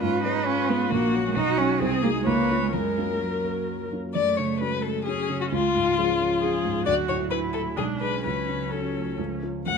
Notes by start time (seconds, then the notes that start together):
0.01 G#2 C#4 F4 B4
0.24 G#3 C#4 D#4 B4
0.46 C#4 F4
0.68 G#3 B3 C#4 B4
0.90 A#1 A#3 F#4
1.14 F#3 C#4 A#4
1.26 G#3
1.35 B1 D#4 F#4
1.58 F#3 C#4 D#4 F#4
1.80 C2 C4 G#4
2.02 G#3 A#3 D#4 F#4
2.15 G#3
2.25 C#2 A#3 B4 C#5
2.51 B3 C#4 F4
2.62 G#3
2.72 F#2 G#3 A#4
2.98 A#3 C#4 F#4
3.19 F#3
3.44 A#3 C#4 F#4
3.92 A#3 C#4 F#4
4.14 F#2 A3 D5
4.37 C#3 C#5
4.60 G#3 C#4 F#4 B4
4.82 A3 A4
5.05 F#3 C#4 F#4 G#4
5.29 C#3
5.41 F#4
5.51 C#2 G#3 F4
5.74 G#2 G#3
5.97 F3 C#4 G#4
6.20 F3 C#4
6.42 C#4 G#4
6.65 G#2
6.86 D2 F#3 F#4 D5
7.09 A2 C#5
7.31 D4 E4 F#4 B4
7.53 A3 A4
7.77 B1 G#3 D4 G#4
8.01 D4 G#4 B4
8.24 C#2 F#3 C#4 B4
8.49 C#3
8.71 C#4 F#4 A4
8.96 A3
9.18 C#2 F3
9.43 C#4 F4
9.66 F#2 A3 F#5